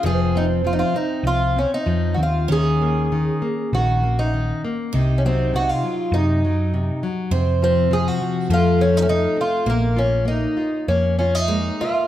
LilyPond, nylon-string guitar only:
\new Staff \with { instrumentName = "Nylon-string guitar" } { \clef bass \time 4/4 \key f \phrygian \tempo 4 = 100 f8 c'8 f8 c'8 f8 c'8 f8 c'8 | ees8 bes8 ees8 bes8 ees8 bes8 ees8 bes8 | c8 ges8 c8 ges8 c8 ges8 c8 ges8 | c8 f8 f8 f8 f8 c'8 f8 c'8 |
bes8 f'8 bes8 f'8 bes8 f'8 bes8 f'8 | }